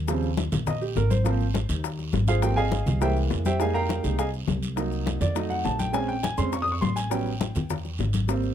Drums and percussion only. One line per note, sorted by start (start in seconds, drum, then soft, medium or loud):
0.08 high bongo medium
0.08 high conga soft
0.08 long guiro medium
0.08 maracas loud
0.23 high bongo soft
0.23 high conga soft
0.23 maracas soft
0.37 high bongo medium
0.37 high conga loud
0.37 short guiro medium
0.37 maracas soft
0.52 high bongo soft
0.52 high conga soft
0.52 low conga medium
0.52 short guiro medium
0.52 maracas medium
0.67 high bongo medium
0.67 high conga soft
0.67 low conga medium
0.67 long guiro medium
0.67 maracas medium
0.81 high bongo soft
0.81 high conga soft
0.81 maracas soft
0.96 high bongo soft
0.96 low bongo medium
0.96 short guiro medium
0.96 maracas soft
1.10 high conga medium
1.10 short guiro medium
1.10 maracas medium
1.25 high bongo medium
1.25 high conga soft
1.25 long guiro medium
1.25 maracas medium
1.40 high bongo soft
1.40 high conga soft
1.40 maracas soft
1.54 high bongo medium
1.54 high conga loud
1.54 short guiro medium
1.54 maracas soft
1.69 high bongo soft
1.69 high conga soft
1.69 short guiro medium
1.69 maracas medium
1.84 high bongo medium
1.84 high conga soft
1.84 long guiro medium
1.84 maracas medium
1.99 high bongo soft
1.99 high conga soft
1.99 maracas soft
2.13 high bongo soft
2.13 low bongo medium
2.13 high conga medium
2.13 short guiro medium
2.13 maracas soft
2.27 high conga medium
2.27 short guiro medium
2.27 maracas medium
2.42 high bongo medium
2.42 high conga soft
2.42 long guiro medium
2.42 maracas loud
2.57 high bongo soft
2.57 high conga soft
2.57 maracas soft
2.72 high bongo medium
2.72 high conga loud
2.72 short guiro medium
2.72 maracas soft
2.87 high bongo soft
2.87 high conga soft
2.87 low conga medium
2.87 short guiro medium
2.87 maracas medium
3.02 high bongo medium
3.02 high conga soft
3.02 long guiro medium
3.02 maracas medium
3.16 high bongo soft
3.16 high conga soft
3.16 maracas soft
3.30 high bongo soft
3.30 low bongo medium
3.30 high conga soft
3.30 short guiro medium
3.30 maracas soft
3.45 high conga medium
3.45 short guiro medium
3.45 maracas medium
3.60 high bongo medium
3.60 long guiro medium
3.60 maracas medium
3.75 high bongo soft
3.75 high conga soft
3.75 maracas soft
3.89 high bongo medium
3.89 high conga medium
3.89 short guiro medium
3.89 maracas soft
4.04 high bongo soft
4.04 high conga soft
4.04 short guiro medium
4.04 maracas medium
4.19 high bongo medium
4.19 high conga soft
4.19 long guiro medium
4.19 maracas medium
4.33 high bongo soft
4.33 high conga soft
4.33 maracas soft
4.48 high bongo soft
4.48 low bongo medium
4.48 high conga medium
4.48 short guiro medium
4.48 maracas soft
4.63 short guiro medium
4.63 maracas medium
4.77 high bongo medium
4.77 high conga soft
4.77 long guiro medium
4.77 maracas medium
4.92 high bongo soft
4.92 high conga soft
4.92 maracas soft
5.06 high bongo medium
5.06 high conga loud
5.06 short guiro medium
5.06 maracas soft
5.21 high bongo soft
5.21 high conga soft
5.21 low conga medium
5.21 short guiro medium
5.21 maracas medium
5.35 high bongo medium
5.35 high conga soft
5.35 long guiro medium
5.35 maracas medium
5.50 high bongo soft
5.50 high conga soft
5.50 maracas soft
5.65 high bongo soft
5.65 low bongo medium
5.65 high conga soft
5.65 short guiro medium
5.65 maracas soft
5.79 high conga medium
5.79 short guiro medium
5.79 maracas medium
5.94 high bongo medium
5.94 high conga soft
5.94 long guiro medium
5.94 maracas medium
6.09 high bongo soft
6.09 high conga soft
6.09 maracas soft
6.23 high bongo medium
6.23 high conga medium
6.23 short guiro medium
6.23 maracas soft
6.38 high bongo soft
6.38 high conga soft
6.38 short guiro medium
6.38 maracas medium
6.52 high bongo medium
6.52 high conga soft
6.52 long guiro medium
6.52 maracas medium
6.67 high bongo soft
6.67 high conga soft
6.67 maracas soft
6.82 high bongo soft
6.82 low bongo medium
6.82 high conga medium
6.82 short guiro medium
6.82 maracas soft
6.96 short guiro medium
6.96 maracas medium
7.11 high bongo medium
7.11 high conga soft
7.11 long guiro medium
7.11 maracas medium
7.26 high bongo soft
7.26 high conga soft
7.26 maracas soft
7.41 high bongo medium
7.41 high conga loud
7.41 short guiro medium
7.41 maracas soft
7.55 high bongo soft
7.55 high conga soft
7.55 low conga medium
7.55 short guiro medium
7.55 maracas medium
7.70 high bongo medium
7.70 high conga soft
7.70 low conga medium
7.70 long guiro medium
7.70 maracas medium
7.85 high bongo soft
7.85 high conga soft
7.85 maracas soft
7.98 high bongo soft
7.98 low bongo medium
7.98 high conga soft
7.98 short guiro medium
7.98 maracas soft
8.13 high conga medium
8.13 short guiro medium
8.13 maracas medium
8.28 high bongo medium
8.28 long guiro medium
8.28 maracas medium
8.43 high bongo soft
8.43 high conga soft
8.43 maracas soft